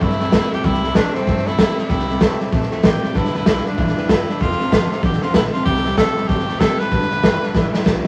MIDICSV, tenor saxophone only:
0, 0, Header, 1, 2, 480
1, 0, Start_track
1, 0, Key_signature, 0, "major"
1, 0, Tempo, 313316
1, 987, Time_signature, 4, 2, 24, 8
1, 12365, End_track
2, 0, Start_track
2, 0, Title_t, "Tenor saxophone"
2, 0, Program_c, 0, 66
2, 44, Note_on_c, 0, 64, 97
2, 809, Note_off_c, 0, 64, 0
2, 835, Note_on_c, 0, 67, 94
2, 992, Note_on_c, 0, 64, 115
2, 1015, Note_off_c, 0, 67, 0
2, 1463, Note_on_c, 0, 62, 98
2, 1486, Note_off_c, 0, 64, 0
2, 1760, Note_on_c, 0, 60, 104
2, 1783, Note_off_c, 0, 62, 0
2, 2257, Note_on_c, 0, 64, 106
2, 2280, Note_off_c, 0, 60, 0
2, 2729, Note_off_c, 0, 64, 0
2, 2751, Note_on_c, 0, 64, 94
2, 3689, Note_off_c, 0, 64, 0
2, 4370, Note_on_c, 0, 67, 91
2, 4853, Note_on_c, 0, 64, 96
2, 4876, Note_off_c, 0, 67, 0
2, 5133, Note_off_c, 0, 64, 0
2, 5160, Note_on_c, 0, 64, 86
2, 5307, Note_off_c, 0, 64, 0
2, 5316, Note_on_c, 0, 64, 89
2, 5614, Note_on_c, 0, 62, 89
2, 5637, Note_off_c, 0, 64, 0
2, 6280, Note_on_c, 0, 64, 89
2, 6303, Note_off_c, 0, 62, 0
2, 6753, Note_off_c, 0, 64, 0
2, 6769, Note_on_c, 0, 65, 100
2, 7656, Note_off_c, 0, 65, 0
2, 7729, Note_on_c, 0, 67, 93
2, 8011, Note_on_c, 0, 65, 97
2, 8034, Note_off_c, 0, 67, 0
2, 8192, Note_off_c, 0, 65, 0
2, 8200, Note_on_c, 0, 64, 87
2, 8328, Note_off_c, 0, 64, 0
2, 8470, Note_on_c, 0, 65, 92
2, 8647, Note_off_c, 0, 65, 0
2, 8658, Note_on_c, 0, 67, 115
2, 9108, Note_off_c, 0, 67, 0
2, 9152, Note_on_c, 0, 69, 106
2, 9612, Note_on_c, 0, 67, 104
2, 9635, Note_off_c, 0, 69, 0
2, 10102, Note_on_c, 0, 69, 105
2, 10125, Note_off_c, 0, 67, 0
2, 10413, Note_on_c, 0, 71, 109
2, 10436, Note_off_c, 0, 69, 0
2, 12032, Note_off_c, 0, 71, 0
2, 12365, End_track
0, 0, End_of_file